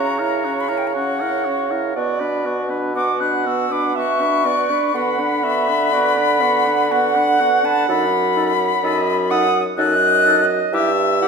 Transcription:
Already playing: C#3 C#4 F#4 C#5 A#5
0.19 E4 A#4
0.45 C#4 F#4
0.60 B5
0.69 E4 A#4 A#5
0.78 G5
0.87 A#5
0.94 C#4 F#4 F#5
1.20 E4 A#4
1.45 C#4 F#4
1.71 E4 A#4
1.96 B2 B3 F#4 D5
2.20 D4 B4
2.45 B3 F#4
2.69 D4 B4
2.95 B3 F#4 F#5 D6
3.20 D4 B4 F#6
3.46 B3 F#4 E6
3.70 D4 B4 D6
3.96 B3 F#4 E5 C#6
4.20 D4 B4
4.44 B3 F#4 D5
4.70 D4 B4
4.94 D3 B3 F#4 F#5 B5
5.19 D4 B4
5.44 B3 F#4 E5
5.68 D4 B4
5.93 B3 F#4 D5
6.17 D4 B4
6.41 B3 F#4 F#5
6.66 D4 B4
6.90 B3 F#4 F#5
7.16 D4 B4
7.40 B3 F#4
7.64 D4 B4 A5
7.88 F#2 D#4 A4 B5
8.36 D#4 A4
8.83 F#2 D#4 A4 D#5
9.31 D#4 A4 F#5 D#6
9.78 F#2 D#4 A4 D#5 F#6
10.26 D#4 A4
10.73 G2 E4 G4 E5 E6
11.22 E4 G4 F#5

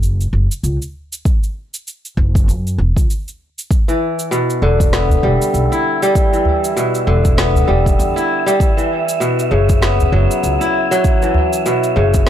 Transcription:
Already playing: F#1
0.03 cabasa
0.21 cabasa
0.33 F#1
0.52 cabasa
0.63 C#2, cabasa
0.82 cabasa
1.13 cabasa
1.25 kick, cabasa
1.43 cabasa
1.74 cabasa
1.87 cabasa
2.05 cabasa
2.17 F#1, kick
2.35 kick, cabasa
2.48 F#2, cabasa
2.67 cabasa
2.78 E1
2.97 C#2, kick, cabasa
3.10 cabasa
3.28 cabasa
3.58 cabasa
3.70 E5, kick, cabasa
3.88 E3, cabasa
4.19 cabasa
4.31 B2, cabasa
4.50 cabasa
4.62 E1 D3
4.80 kick, cabasa
4.93 B3, snare, cabasa
5.10 udu, cabasa
5.23 E1 G3
5.42 cabasa
5.54 B1, cabasa
5.72 E4, cabasa
6.02 G3, cabasa
6.15 kick, cabasa
6.33 E3, cabasa
6.45 udu
6.64 cabasa
6.76 B2, cabasa
6.95 cabasa
7.07 E1 D3
7.25 kick, cabasa
7.37 B3, snare, cabasa
7.55 udu, cabasa
7.68 E1 G3
7.86 kick, cabasa
7.99 E2, cabasa
8.16 E4, cabasa
8.46 G3, cabasa
8.60 kick, cabasa
8.77 E3, cabasa
9.09 cabasa
9.20 B2, cabasa
9.39 cabasa
9.51 F#1 C#3
9.69 kick, cabasa
9.81 B3, snare, cabasa
10.00 udu, cabasa
10.12 F#1 F#3
10.31 cabasa
10.43 C#2, cabasa
10.61 E4, cabasa
10.91 F#3, cabasa
11.04 kick, cabasa
11.22 E3, cabasa
11.34 udu
11.53 cabasa
11.66 B2, cabasa
11.84 cabasa
11.96 F#1 C#3
12.14 kick, cabasa

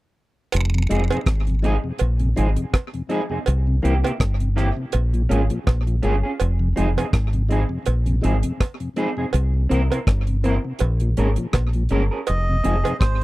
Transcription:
0.52 F1, closed hi-hat, cowbell, vibraslap
0.74 F2 C3
0.89 F1 F3 G#3 C4 D#4 G#4, closed hi-hat
1.10 F2 C3 C4 D#4 G#4, closed hi-hat, cowbell
1.26 G#1, kick, cross-stick, closed hi-hat
1.47 F2 C3, closed hi-hat
1.62 F3 G#3 C4 D#4 G#4, closed hi-hat
1.84 F2 C3
1.98 A#1, closed hi-hat, cowbell
2.19 F2 C3, closed hi-hat
2.36 G#1 F3 G#3 C4 D#4 G#4, closed hi-hat
2.56 F2 C3, closed hi-hat
2.74 kick, cross-stick, closed hi-hat, cowbell
2.93 F2 C3, closed hi-hat
3.09 F3 G#3 C4 D#4 G#4, closed hi-hat
3.29 F2 C3 C4 D#4 G#4
3.46 C2, closed hi-hat, cowbell
3.67 C3
3.82 C2 E3 A#3 C4 E4 G4, closed hi-hat
4.04 C3 A#3 E4 G4, closed hi-hat, cowbell
4.20 G1, kick, cross-stick, closed hi-hat
4.40 C3, closed hi-hat
4.56 E3 A#3 C4 E4 G4, cross-stick, closed hi-hat
4.77 C3
4.92 A#1, closed hi-hat, cowbell
5.13 A#2 F3, closed hi-hat
5.29 G#1 G#3 A#3 C#4 F4 G#4, closed hi-hat
5.50 A#2 F3, closed hi-hat
5.67 A#1, kick, cross-stick, closed hi-hat, cowbell
5.87 A#2 F3, closed hi-hat
6.02 G1 G#3 A#3 C#4 F4 G#4, closed hi-hat
6.23 C#4 F4 G#4
6.40 F1, closed hi-hat, cowbell
6.59 F2 C3
6.76 F1 F3 G#3 C4 D#4 G#4, closed hi-hat
6.97 F2 C3 C4 D#4 G#4, closed hi-hat, cowbell
7.13 G#1, kick, cross-stick, closed hi-hat
7.33 F2 C3, closed hi-hat
7.49 F3 G#3 C4 D#4 G#4, closed hi-hat
7.69 F2 C3
7.86 A#1, closed hi-hat, cowbell
8.06 F2 C3, closed hi-hat
8.22 G#1 F3 G#3 C4 D#4 G#4, closed hi-hat
8.43 F2 C3, closed hi-hat
8.60 kick, cross-stick, closed hi-hat, cowbell
8.80 F2 C3, closed hi-hat
8.96 F3 G#3 C4 D#4 G#4, closed hi-hat
9.17 F2 C3 C4 D#4 G#4
9.33 C2, closed hi-hat, cowbell
9.54 C3
9.69 C2 E3 A#3 C4 E4 A#4, closed hi-hat
9.90 C3 C4 E4 A#4, closed hi-hat, cowbell
10.07 G1, kick, cross-stick, closed hi-hat
10.27 C3, closed hi-hat
10.43 E3 A#3 C4 E4 A#4, closed hi-hat
10.65 C3
10.79 A#1, closed hi-hat, cowbell
11.00 A#2 F3, closed hi-hat
11.17 G#1 G#3 A#3 C#4 G#4 A#4, closed hi-hat
11.36 A#2 F3, closed hi-hat
11.53 A#1, kick, cross-stick, closed hi-hat, cowbell
11.73 A#2 F3, closed hi-hat
11.89 G1 G#3 A#3 C#4 G#4 A#4, closed hi-hat
12.11 C#4 G#4 A#4
12.27 F1 D#5, closed hi-hat, cowbell
12.49 F2 C3
12.64 F1 F3 G#3 C4 D#4 G#4, closed hi-hat
12.84 F2 C3 C4 D#4 G#4, closed hi-hat, cowbell
13.00 G#1 C5, kick, cross-stick, closed hi-hat

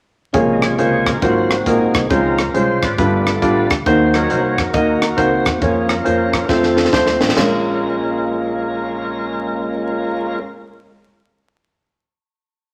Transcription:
0.33 A#1 A#2 C3 C#3 G#3 A#3 F4 G#4 C#5, kick, closed hi-hat
0.53 D#5
0.61 F4 G#4 C#5, cross-stick, closed hi-hat
0.78 C#2 A#3 F4 G#4 C5, closed hi-hat
1.06 A#1 A#4, kick, cross-stick, closed hi-hat
1.21 G#1 G#2 F#3 A#3 C4 F4 F#4 C5, kick, closed hi-hat
1.51 cross-stick, closed hi-hat
1.66 A#1 A#3 C4 D#4 F4 F#4 G#4 A#4, kick, closed hi-hat
1.94 C2, kick, cross-stick, closed hi-hat
2.10 C#2 C#3 F3 G#3 C4 C#4 D#4 F4 A#4 C5, kick, closed hi-hat
2.38 cross-stick, closed hi-hat
2.54 C2 G#3 C#4 F4 C5, closed hi-hat
2.82 G#1 F4 B4 D5, kick, cross-stick, closed hi-hat
2.98 G1 G2 G3 A3 B3 D4 F4 B4, kick, closed hi-hat
3.27 cross-stick, closed hi-hat
3.42 A1 G3 D4 F4 D5, kick, closed hi-hat
3.70 D2, kick, cross-stick, closed hi-hat
3.86 D#2 D#3 A#3 D#4 F#4 C5, kick, closed hi-hat
4.06 C5
4.14 F#3 A#3 D#4 F#4 A#4 C#5, cross-stick, closed hi-hat
4.30 C2 A#3 D#4 F#4 C5, closed hi-hat
4.58 F2 F#4 A#4, kick, cross-stick, closed hi-hat
4.73 D#2 A#3 D#4 F#4 D#5, kick, closed hi-hat
5.02 cross-stick, closed hi-hat
5.17 C#2 A#3 C4 D#4 F#4 C5, kick, closed hi-hat
5.46 E2, kick, cross-stick, closed hi-hat
5.61 F2 F3 A#3 C#4 F4 G#4 C#5, kick, closed hi-hat
5.89 C#4 F4 A#4, cross-stick, closed hi-hat
6.04 F2 A#3 C#4 F4 C5, closed hi-hat
6.33 kick, cross-stick, closed hi-hat
6.48 F2 F3 A3 C4 F4 A4 C5, kick, snare
6.63 snare
6.77 snare
6.85 snare
6.92 D#2 A3 C4 F4 C5, kick, snare
7.07 snare
7.21 A1, snare
7.29 snare
7.36 A#1 G#3 A#3 C#4 F4 A#4, snare, crash

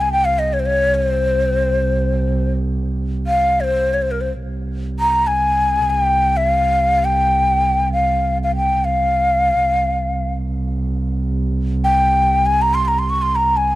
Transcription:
Already playing: C2
0.01 G#5
0.12 G5
0.25 F5
0.39 D#5
0.53 C#5
0.60 C5
0.66 C#5
0.95 C5
3.27 F5
3.60 C5 C#5
3.94 C#5
4.02 C5
4.11 A#4
4.21 C5
4.44 C2
5.00 A#5
5.27 G#5
5.90 G5
6.37 E5
6.48 F5
7.05 G5
7.93 F5
8.43 F5
8.56 G5
8.85 F5
9.62 C2
11.84 G5
12.46 G#5
12.62 A#5
12.74 C6
12.85 A#5 C6
12.99 C6
13.10 C#6
13.22 C6
13.36 A#5
13.57 G#5

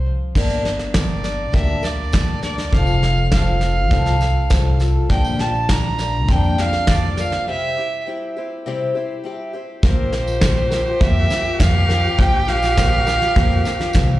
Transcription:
0.06 F3
0.35 G1 G2 D3 G3 A#3 D4 A#4, kick, snare, crash, tambourine
0.50 tambourine
0.64 G3 A#3 D4 A#4, snare
0.79 snare, tambourine
0.94 G3 A#3 D4 A#4 D5, kick, snare, tambourine
1.09 tambourine
1.24 G3 A#3 D4 A#4, snare, tambourine
1.52 D2 G2 D3 G3 A#3 D4 A#4 E5, kick, snare, tambourine
1.68 tambourine
1.83 G3 A#3 D4 A#4 D5, snare, tambourine
2.12 D2 G3 A#3 D4 A#4, kick, snare, tambourine
2.43 G3 A#3 D4 A#4 D5, snare, tambourine
2.58 snare
2.72 F1 F3 C4 F4 A4 F5, kick, snare, tambourine
2.87 tambourine
3.02 C4 F4 A4, snare
3.17 tambourine
3.32 F3 C4 F4 A4 F5, kick, snare, tambourine
3.47 tambourine
3.61 C4 F4 A4, snare, tambourine
3.91 C2 F3 C4 F4 A4, kick, snare, tambourine
4.06 snare, tambourine
4.21 C4 F4 A4, snare, tambourine
4.50 C2 F3 C4 F4 A4, kick, snare, tambourine
4.80 C4 F4 A4, snare, tambourine
5.09 A#1 A#2 D3 F3 A#3 D4 G4 G5, kick, snare, tambourine
5.24 tambourine
5.39 F3 A#3 D4 G4 A5, snare
5.55 tambourine
5.69 F3 A#3 D4 G4 A#5, kick, snare, tambourine
5.84 tambourine
5.99 F3 A#3 D4 G4, snare, tambourine
6.28 F2 A#2 D3 F3 A#3 D4 G4 G5, kick, snare, tambourine
6.44 tambourine
6.58 F3 A#3 D4 G4 F5, snare, tambourine
6.73 snare
6.87 F2 F3 A#3 D4 G4 D5, kick, snare, tambourine
7.17 F3 A#3 D4 G4 F5, snare, tambourine
7.32 snare
7.48 C3 G3 C4 E4 G4 E5
7.77 C4 E4 G4
8.07 G3 C4 E4 G4
8.37 C4 E4 G4
8.66 C3 G3 C4 E4 G4
8.95 C4 E4 G4
9.24 G3 C4 E4 G4
9.53 C4 E4 G4
9.83 A#1 A#3 C4 F4 G4 A#4 C5, kick, snare
10.12 C4 F4 A#4, snare, tambourine
10.27 tambourine
10.41 A#3 C4 F4 A#4, kick, snare, tambourine
10.57 tambourine
10.71 C4 F4 A#4, snare, tambourine
10.87 tambourine
11.01 F2 A#3 C4 F4 A#4 E5, kick, snare, tambourine
11.30 C4 F4 A#4, snare, tambourine
11.45 tambourine
11.60 F2 A#3 C4 F4 A#4 F5, kick, snare, tambourine
11.75 tambourine
11.89 C4 F4 A#4, snare
12.04 tambourine
12.18 A#1 A#3 C4 F4 A#4 G5, kick, snare
12.47 C4 F4 A#4 F5, snare, tambourine
12.62 snare, tambourine
12.76 A#3 C4 F4 A#4, kick, snare, tambourine
12.92 tambourine
13.07 C4 F4 A#4, snare, tambourine
13.21 snare, tambourine
13.36 F2 A#3 C4 F4 A#4, kick, snare, tambourine
13.51 tambourine
13.65 C4 F4 A#4, snare, tambourine
13.79 snare, tambourine
13.93 C2 A#3 C4 F4 A#4, kick, snare, tambourine
14.08 tambourine

